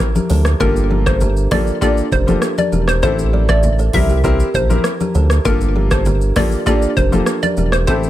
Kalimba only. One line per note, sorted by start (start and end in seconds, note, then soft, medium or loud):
0.16 0.24 G4 medium
0.16 0.23 A#4 medium
0.30 0.39 A4 medium
0.30 0.38 C5 medium
0.60 0.69 D4 medium
0.60 0.68 G4 medium
0.91 0.99 G4 medium
0.91 0.99 A#4 medium
1.06 1.14 A4 medium
1.06 1.14 C5 medium
1.21 1.37 G4 medium
1.21 1.36 A#4 medium
1.82 1.90 D4 medium
1.82 1.90 G4 medium
2.12 2.21 G4 medium
2.12 2.20 A#4 medium
2.28 2.36 A4 medium
2.28 2.35 C5 medium
2.58 2.66 G4 medium
2.58 2.65 A#4 medium
2.72 2.81 G4 medium
2.72 2.80 A#4 medium
3.03 3.11 A4 medium
3.03 3.11 C5 medium
3.33 3.42 A#4 medium
3.33 3.41 D5 medium
3.49 3.57 C5 medium
3.49 3.56 E5 medium
3.79 3.87 A4 medium
3.79 3.87 C5 medium
4.10 4.17 G4 medium
4.10 4.17 A#4 medium
4.24 4.33 E4 medium
4.24 4.32 G4 medium
4.54 4.63 G4 medium
4.54 4.62 A#4 medium
5.01 5.08 G4 medium
5.01 5.08 A#4 medium
5.15 5.24 A4 medium
5.15 5.23 C5 medium
5.45 5.54 D4 medium
5.45 5.53 G4 medium
5.76 5.84 G4 medium
5.76 5.84 A#4 medium
5.91 5.99 A4 medium
5.91 5.99 C5 medium
6.06 6.22 G4 medium
6.06 6.21 A#4 medium
6.67 6.75 D4 medium
6.67 6.75 G4 loud
6.97 7.05 G4 medium
6.97 7.05 A#4 medium
7.13 7.21 A4 medium
7.13 7.20 C5 medium
7.43 7.51 G4 medium
7.43 7.50 A#4 medium
7.58 7.66 G4 medium
7.58 7.66 A#4 medium
7.88 7.96 A4 medium
7.88 7.96 C5 medium